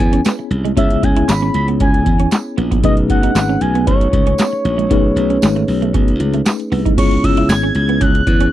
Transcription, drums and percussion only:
0.13 closed hi-hat
0.25 snare, clap, closed hi-hat, tambourine
0.51 closed hi-hat
0.65 closed hi-hat
0.77 kick, closed hi-hat
0.90 closed hi-hat
1.03 kick, closed hi-hat
1.16 closed hi-hat
1.29 snare, clap, closed hi-hat, tambourine
1.54 closed hi-hat
1.68 closed hi-hat
1.80 kick, closed hi-hat
1.94 closed hi-hat
2.06 kick, closed hi-hat
2.19 closed hi-hat
2.31 snare, clap, closed hi-hat, tambourine
2.58 closed hi-hat
2.71 kick, closed hi-hat
2.84 kick, closed hi-hat
2.97 closed hi-hat
3.10 kick, closed hi-hat
3.23 closed hi-hat
3.35 snare, clap, closed hi-hat, tambourine
3.61 closed hi-hat
3.75 closed hi-hat
3.87 kick, closed hi-hat
4.01 closed hi-hat
4.13 kick, closed hi-hat
4.27 closed hi-hat
4.38 snare, clap, closed hi-hat, tambourine
4.65 closed hi-hat
4.79 closed hi-hat
4.91 kick, closed hi-hat
5.17 closed hi-hat
5.30 closed hi-hat
5.42 snare, clap, closed hi-hat, tambourine
5.56 closed hi-hat
5.68 open hi-hat
5.82 closed hi-hat
5.94 kick, closed hi-hat
6.08 closed hi-hat
6.20 closed hi-hat
6.33 closed hi-hat
6.45 snare, clap, closed hi-hat, tambourine
6.59 closed hi-hat
6.72 open hi-hat
6.86 kick, closed hi-hat
6.98 kick, closed hi-hat, crash
7.11 closed hi-hat
7.24 kick, closed hi-hat
7.37 closed hi-hat
7.49 snare, clap, closed hi-hat, tambourine
7.75 closed hi-hat
7.89 closed hi-hat
8.01 kick, closed hi-hat
8.15 closed hi-hat
8.27 kick, closed hi-hat
8.40 closed hi-hat

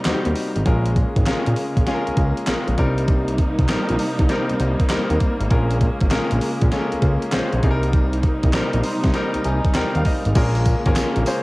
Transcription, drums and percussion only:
0.05 snare, clap, closed hi-hat
0.25 closed hi-hat
0.35 open hi-hat
0.56 closed hi-hat
0.66 kick, closed hi-hat
0.86 closed hi-hat
0.96 kick, closed hi-hat
1.16 kick, closed hi-hat
1.26 snare, clap, closed hi-hat
1.46 closed hi-hat
1.56 open hi-hat
1.77 kick, closed hi-hat
1.87 snare, closed hi-hat
2.07 closed hi-hat
2.17 kick, closed hi-hat
2.37 closed hi-hat
2.47 snare, clap, closed hi-hat
2.68 closed hi-hat
2.78 kick, closed hi-hat
2.98 closed hi-hat
3.08 kick, closed hi-hat
3.28 closed hi-hat
3.38 kick, closed hi-hat
3.59 kick, closed hi-hat
3.68 snare, clap, closed hi-hat
3.89 closed hi-hat
3.99 open hi-hat
4.19 kick, closed hi-hat
4.29 snare, closed hi-hat
4.50 closed hi-hat
4.60 closed hi-hat
4.80 kick, closed hi-hat
4.90 snare, clap, closed hi-hat
5.10 closed hi-hat
5.20 kick, closed hi-hat
5.41 closed hi-hat
5.51 kick, closed hi-hat
5.71 closed hi-hat
5.81 kick, closed hi-hat
6.00 kick, closed hi-hat
6.11 snare, clap, closed hi-hat
6.31 closed hi-hat
6.41 open hi-hat
6.62 kick, closed hi-hat
6.72 snare, closed hi-hat
6.92 closed hi-hat
7.02 kick, closed hi-hat
7.22 closed hi-hat
7.32 snare, clap, closed hi-hat
7.53 closed hi-hat
7.63 kick, closed hi-hat
7.83 closed hi-hat
7.93 kick, closed hi-hat
8.13 closed hi-hat
8.23 kick, closed hi-hat
8.43 kick, closed hi-hat
8.53 snare, clap, closed hi-hat
8.73 closed hi-hat
8.83 open hi-hat
9.04 kick, snare, closed hi-hat
9.14 snare, closed hi-hat
9.34 closed hi-hat
9.44 closed hi-hat
9.65 kick, closed hi-hat
9.74 snare, clap, closed hi-hat
9.95 closed hi-hat
10.05 kick, open hi-hat
10.25 closed hi-hat
10.35 kick, closed hi-hat, crash, tambourine
10.55 closed hi-hat
10.66 kick, closed hi-hat, tambourine
10.86 kick, closed hi-hat
10.96 snare, clap, closed hi-hat, tambourine
11.16 closed hi-hat
11.26 open hi-hat, tambourine

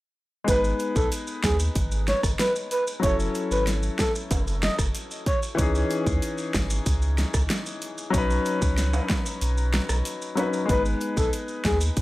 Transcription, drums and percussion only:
0.48 kick, closed hi-hat, maracas
0.64 maracas
0.79 closed hi-hat, maracas
0.96 kick, maracas
1.12 closed hi-hat, maracas
1.27 maracas
1.44 kick, snare, closed hi-hat, maracas
1.59 maracas
1.75 kick, closed hi-hat, maracas
1.92 maracas
2.07 snare, closed hi-hat, maracas
2.23 kick, cross-stick, maracas
2.39 snare, closed hi-hat, maracas
2.56 maracas
2.71 closed hi-hat, maracas
2.87 maracas
3.03 kick, closed hi-hat, maracas
3.20 maracas
3.35 closed hi-hat, maracas
3.51 maracas
3.67 snare, closed hi-hat, maracas
3.83 maracas
3.99 kick, snare, closed hi-hat, maracas
4.15 maracas
4.31 kick, closed hi-hat, high timbale, maracas
4.47 maracas
4.63 snare, closed hi-hat, maracas
4.79 kick, cross-stick, maracas
4.95 closed hi-hat, maracas
5.11 maracas
5.26 kick, closed hi-hat, maracas
5.43 maracas
5.58 kick, closed hi-hat, maracas
5.75 maracas
5.90 closed hi-hat, maracas
6.07 kick, maracas
6.22 closed hi-hat, maracas
6.38 maracas
6.54 kick, snare, closed hi-hat, maracas
6.70 maracas
6.86 kick, closed hi-hat, maracas
7.02 maracas
7.18 snare, closed hi-hat, maracas
7.34 kick, cross-stick, maracas
7.50 snare, closed hi-hat, maracas
7.66 maracas
7.82 closed hi-hat, maracas
7.98 maracas
8.14 kick, closed hi-hat, maracas
8.30 maracas
8.46 closed hi-hat, maracas
8.62 kick, maracas
8.78 snare, closed hi-hat, maracas
8.93 high timbale, maracas
9.10 kick, snare, closed hi-hat, maracas
9.26 maracas
9.41 closed hi-hat, maracas
9.58 maracas
9.73 snare, closed hi-hat, maracas
9.89 cross-stick, maracas
10.05 closed hi-hat, maracas
10.22 maracas
10.37 closed hi-hat, high timbale, maracas
10.53 maracas
10.69 kick, closed hi-hat, maracas
10.85 maracas
11.01 closed hi-hat, maracas
11.17 kick, maracas
11.33 closed hi-hat, maracas
11.48 maracas
11.65 kick, snare, closed hi-hat, maracas
11.81 maracas
11.97 kick, closed hi-hat, maracas

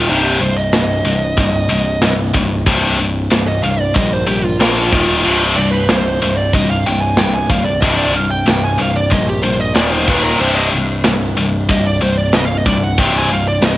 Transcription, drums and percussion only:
0.09 open hi-hat
0.73 snare, open hi-hat
1.37 kick, open hi-hat
2.02 snare, open hi-hat
2.34 kick
2.66 kick, open hi-hat
3.32 snare, open hi-hat
3.96 kick, open hi-hat
4.61 snare, open hi-hat
4.93 kick
5.24 crash
5.89 snare, open hi-hat
6.53 kick, open hi-hat
7.17 snare, open hi-hat
7.50 kick
7.82 kick, open hi-hat
8.48 snare, open hi-hat
9.11 kick, open hi-hat
9.76 snare, open hi-hat
10.08 kick, crash
11.04 snare, open hi-hat
11.69 kick, open hi-hat
12.33 snare, open hi-hat
12.66 kick
12.98 kick, open hi-hat
13.62 snare, open hi-hat

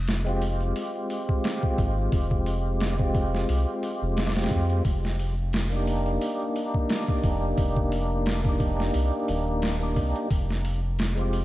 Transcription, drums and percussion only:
0.08 snare, open hi-hat
0.27 closed hi-hat
0.42 open hi-hat
0.60 closed hi-hat
0.76 open hi-hat
1.10 open hi-hat
1.29 kick
1.44 snare, open hi-hat
1.63 kick
1.78 kick, open hi-hat
2.12 kick, open hi-hat
2.31 kick
2.46 open hi-hat
2.80 snare, open hi-hat
2.99 kick
3.14 kick, open hi-hat
3.35 snare
3.49 open hi-hat
3.83 open hi-hat
4.17 snare, open hi-hat
4.26 snare, open hi-hat
4.36 snare, open hi-hat
4.43 snare, open hi-hat
4.51 kick, open hi-hat
4.70 closed hi-hat
4.85 kick, open hi-hat
5.05 snare
5.19 open hi-hat
5.53 snare, open hi-hat
5.72 closed hi-hat
5.87 open hi-hat
6.06 closed hi-hat
6.21 open hi-hat
6.56 open hi-hat
6.74 kick
6.89 snare, open hi-hat
7.08 kick
7.23 kick, open hi-hat
7.58 kick, open hi-hat
7.77 kick
7.92 open hi-hat
8.26 snare, open hi-hat
8.45 kick
8.60 kick, open hi-hat
8.80 snare
8.94 open hi-hat
9.28 open hi-hat
9.62 snare, open hi-hat
9.96 kick, open hi-hat
10.16 closed hi-hat
10.31 kick, open hi-hat
10.50 snare
10.65 open hi-hat
10.99 snare, open hi-hat
11.18 closed hi-hat
11.33 open hi-hat

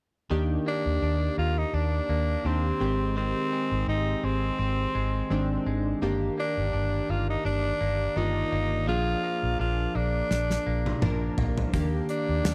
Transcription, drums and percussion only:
10.31 snare
10.50 snare
10.86 high tom
11.02 mid tom
11.38 floor tom
11.58 floor tom
11.73 kick, closed hi-hat
12.09 closed hi-hat
12.45 snare, closed hi-hat

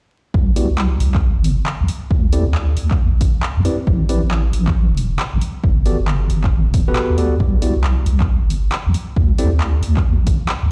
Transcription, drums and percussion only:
0.34 kick
0.56 open hi-hat
0.78 clap
1.00 open hi-hat
1.15 kick, clap
1.44 open hi-hat
1.66 clap
1.88 open hi-hat
2.11 kick
2.33 open hi-hat
2.55 clap
2.77 open hi-hat
2.91 kick, clap
3.21 kick, open hi-hat
3.43 clap
3.65 open hi-hat
3.87 kick
4.09 open hi-hat
4.31 clap
4.53 open hi-hat
4.67 kick, clap
4.97 open hi-hat
5.19 clap
5.42 open hi-hat
5.64 kick
5.86 open hi-hat
6.08 clap
6.30 open hi-hat
6.44 kick, clap
6.74 kick, open hi-hat
6.96 clap
7.18 open hi-hat
7.40 kick
7.62 open hi-hat
7.84 clap
8.06 open hi-hat
8.20 kick, clap
8.50 open hi-hat
8.72 clap
8.94 open hi-hat
9.16 kick
9.38 open hi-hat
9.60 clap
9.83 open hi-hat
9.97 kick, clap
10.27 kick, open hi-hat
10.49 clap

